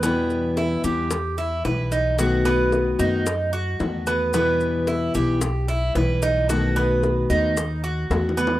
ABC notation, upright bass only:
X:1
M:4/4
L:1/8
Q:1/4=112
K:Em
V:1 name="Upright bass" clef=bass
E,,3 E,,3 B,,,2- | B,,,3 F,,3 E,,2- | E,,3 B,,,3 B,,,2- | B,,,3 ^D,,3 E,,2 |]